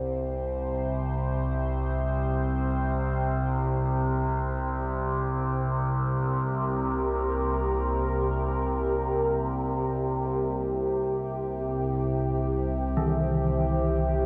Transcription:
Already playing: C2 C3 G4 C5
5.15 A#4
10.27 C2 C3
10.99 C5
12.97 D#3

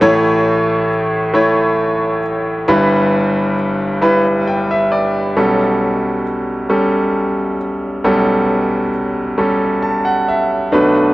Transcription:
0.01 A1 A2 A3 E4 C#5
1.34 A3 E4 C#5
2.68 G1 G2 G3 E4 B4
4.01 G3 E4 B4
4.48 G5
4.71 E5
4.92 D5
5.37 B1 B2 G3 C#4 A4
6.69 G3 C#4 A4
8.04 B1 B2 G3 C#4 A4
9.38 G3 C#4 A4
9.82 A5
10.05 F#5
10.28 E5
10.72 B1 B2 A3 D4 B4

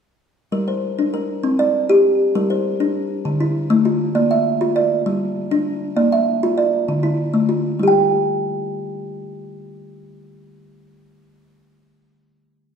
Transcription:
0.52 G3 A#4
0.68 C5
0.99 D4
1.14 A#4
1.43 C4
1.59 D5
1.89 G4
2.35 G3 A#4
2.50 C5
2.80 D4
3.25 D3
3.40 E4
3.70 A3
3.85 F4
4.15 A#3 D5
4.31 E5
4.61 F4
4.76 D5
5.06 G3
5.51 D4
5.97 A#3 D5
6.12 E5
6.43 F4
6.58 D5
6.88 D3
7.03 E4
7.34 A3
7.49 F4
7.79 G3 G4
7.88 G5

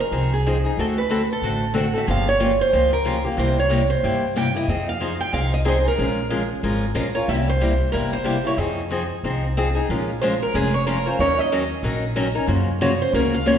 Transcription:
0.00 A#4
0.11 C2 F3 C4 D#4 G#4
0.34 G#4
0.46 F3 C4 D#4 G#4
0.65 C4 D#4 G#4
0.77 D2 D3 A3 C4 F#4 A4
0.98 B4
1.10 D3 A3 C4 F#4 A4
1.33 A4
1.42 A1 D3 A3 C4 F#4 A4
1.74 D3 A3 C4 F#4 A4 F#5
1.94 C4 F#4 A4
1.98 E5
2.07 G1 C#3 F3 A#3 F4 G4 F5
2.29 C#5
2.40 C#3 F3 A#3 F4 G4
2.61 C5
2.73 C#2 C#3 F3 A#3 F4 G4
2.93 A#4
3.05 C#3 F3 A#3 F4 G4
3.25 A#3 F4 G4
3.37 C2 C3 G3 A#3 E4 G4 C5
3.60 C#5
3.69 C3 G3 A#3 E4 G4
3.90 C5
4.03 G2 C3 G3 A#3 E4 G4
4.36 C3 G3 A#3 E4 G4 G5
4.54 A#3 E4 G4 D#5
4.68 F2 F3 C4 D#4 G#4
4.89 F5
5.01 F3 C4 D#4 G#4
5.21 G5
5.32 C2 F3 C4 D#4 G#4 F5
5.54 D#5
5.65 F3 C4 D#4 G#4 C5
5.84 C4 D#4 G#4 A#4
5.98 A#1 F3 G#3 C#4 F4 A#4
6.30 F3 G#3 C#4 F4 A#4
6.63 G#1 F3 G#3 C#4 F4 A#4
6.95 A#1 F3 G#3 C#4 F4 A#4 D#5
7.15 C#4 F4 A#4 C#5
7.28 C2 C3 G3 A#3 E4 G4 E5
7.49 C5
7.61 C3 G3 A#3 E4 G4
7.92 G1 C3 G3 A#3 E4 G4 A#4
8.13 C5
8.24 C3 G3 A#3 E4 G4
8.44 A#3 E4 G4 C#5
8.57 F2 F3 C4 D#4 G#4 D#5
8.91 F3 C4 D#4 G#4
9.23 C2 F3 C4 D#4 G#4
9.57 F3 C4 D#4 G#4
9.75 C4 D#4 G#4
9.89 A#1 F3 G#3 C#4 F4 A#4
10.22 F3 G#3 C#4 F4 A#4 C5
10.42 A#4
10.54 F1 F3 G#3 C#4 F4 G#4 A#4
10.74 C#5
10.87 F3 G#3 C#4 F4 A#4
11.06 C#4 F4 A#4 C5
11.19 D#2 D#3 F#3 C#4 D#4 A#4 C#5
11.39 D#5
11.52 D#3 F#3 C#4 D#4 A#4
11.83 A#1 D#3 F#3 C#4 D#4 A#4
12.16 D#3 F#3 C#4 D#4 A#4
12.35 C#4 D#4 A#4
12.47 F#2 C#3 F3 A#3 C#4 F#4
12.81 C#3 F3 A#3 C#4 F#4 C#5
13.02 C5
13.13 C#2 C#3 F3 A#3 C#4 F#4 A#4
13.34 F5
13.46 C#3 F3 A#3 C#4 F#4 C#5

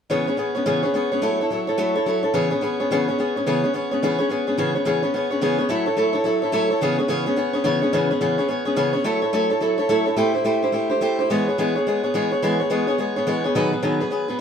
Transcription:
0.10 C#3 E3 B3 C#4 G#4 C#5
0.27 B3 C#4 G#4 C#5
0.37 B3 C#4 G#4 C#5
0.55 B3 C#4 G#4 C#5
0.66 C#3 E3 B3 C#4 G#4 C#5
0.83 B3 C#4 G#4 C#5
0.94 B3 C#4 G#4 C#5
1.12 B3 C#4 G#4 C#5
1.22 F#3 A3 E4 A4 C#5
1.40 E4 A4 C#5
1.50 F#3 E4 A4 C#5
1.67 E4 A4 C#5
1.78 F#3 A3 E4 A4 C#5
1.95 E4 A4 C#5
2.06 F#3 E4 A4 C#5
2.23 E4 A4 C#5
2.34 C#3 E3 B3 C#4 G#4 C#5
2.50 B3 C#4 G#4 C#5
2.61 B3 C#4 G#4 C#5
2.80 B3 C#4 G#4 C#5
2.91 C#3 E3 B3 C#4 G#4 C#5
3.08 B3 C#4 G#4 C#5
3.18 B3 C#4 G#4 C#5
3.36 B3 C#4 G#4 C#5
3.46 C#3 E3 B3 C#4 G#4 C#5
3.64 B3 C#4 G#4 C#5
3.74 B3 C#4 G#4 C#5
3.91 B3 C#4 G#4 C#5
4.03 C#3 E3 B3 C#4 G#4 C#5
4.18 B3 C#4 G#4 C#5
4.29 B3 C#4 G#4 C#5
4.47 B3 C#4 G#4 C#5
4.58 C#3 E3 B3 C#4 G#4 C#5
4.75 B3 C#4 G#4 C#5
4.85 C#3 E3 B3 C#4 G#4 C#5
5.02 B3 C#4 G#4 C#5
5.14 B3 C#4 G#4 C#5
5.30 B3 C#4 G#4 C#5
5.41 C#3 E3 B3 C#4 G#4 C#5
5.58 B3 C#4 G#4 C#5
5.69 F#3 A3 E4 A4 C#5
5.86 E4 A4 C#5
5.97 F#3 A3 E4 A4 C#5
6.13 E4 A4 C#5
6.24 F#3 E4 A4 C#5
6.42 E4 A4 C#5
6.52 F#3 A3 E4 A4 C#5
6.70 E4 A4 C#5
6.81 C#3 E3 B3 C#4 G#4 C#5
6.98 B3 C#4 G#4 C#5
7.08 C#3 E3 B3 C#4 G#4 C#5
7.26 B3 C#4 G#4 C#5
7.36 B3 C#4 G#4 C#5
7.53 B3 C#4 G#4 C#5
7.64 C#3 E3 B3 C#4 G#4 C#5
7.82 B3 C#4 G#4 C#5
7.93 C#3 E3 B3 C#4 G#4 C#5
8.10 B3 C#4 G#4 C#5
8.21 C#3 E3 B3 C#4 G#4 C#5
8.38 B3 C#4 G#4 C#5
8.48 B3 C#4 G#4 C#5
8.65 B3 C#4 G#4 C#5
8.76 C#3 E3 B3 C#4 G#4 C#5
8.93 B3 C#4 G#4 C#5
9.04 F#3 A3 E4 A4 C#5
9.22 E4 A4 C#5
9.33 F#3 A3 E4 A4 C#5
9.50 E4 A4 C#5
9.61 F#3 E4 A4 C#5
9.78 E4 A4 C#5
9.89 F#3 A3 E4 A4 C#5
10.06 E4 A4 C#5
10.16 A3 E4 G4 C5
10.34 E4 G4 C5
10.45 A3 E4 G4 C5
10.63 E4 G4 C5
10.72 A3 E4 G4 C5
10.90 E4 G4 C5
11.01 A3 E4 G4 C5
11.19 E4 G4 C5
11.30 E3 G#3 B3 G#4 C#5
11.48 B3 G#4 C#5
11.58 E3 G#3 B3 G#4 C#5
11.75 B3 G#4 C#5
11.87 G#3 B3 G#4 C#5
12.03 B3 G#4 C#5
12.14 E3 G#3 B3 G#4 C#5
12.32 B3 G#4 C#5
12.42 E3 G#3 B3 G#4 C#5
12.60 B3 G#4 C#5
12.70 E3 G#3 B3 G#4 C#5
12.87 B3 G#4 C#5
12.98 G#3 B3 G#4 C#5
13.16 B3 G#4 C#5
13.27 E3 G#3 B3 G#4 C#5
13.44 B3 G#4 C#5
13.55 B2 D#3 F#3 B3 G#4 B4
13.72 F#3 B3 G#4 B4
13.83 B2 D#3 F#3 B3 G#4 B4
14.00 F#3 B3 G#4 B4
14.10 F#3 B3 G#4 B4
14.28 F#3 B3 G#4 B4

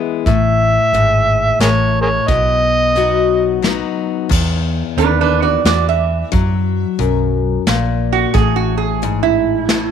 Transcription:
Already playing: E3 G#3 B3 E4
0.26 A1 A2 E5, kick, closed hi-hat
0.93 G#1 G#2, closed hi-hat
1.60 A1 A2 G#4 A#4 C#5, snare, closed hi-hat
2.01 G#4 A#4 C#5
2.28 B1 B2 D#5, kick, closed hi-hat
2.96 F#3 B3 D#4 F#4, closed hi-hat
3.62 F#3 B3 D#4 F#4, snare, closed hi-hat
4.29 E2, kick, crash
4.97 D#2 D#3 D4 B4, closed hi-hat
5.21 D4 B4
5.42 F#4 D5
5.65 E2 E3 F#4 D5, snare, closed hi-hat
5.89 E5
6.32 F#2 F#3, kick, closed hi-hat
6.99 B1 F#2, closed hi-hat
7.67 A#1 A#2, snare, closed hi-hat
8.13 F#4
8.34 A1 A2 G#4, kick, closed hi-hat
8.56 F#4
8.78 G#4
9.02 G#2, closed hi-hat
9.23 E4
9.69 A2, snare, closed hi-hat

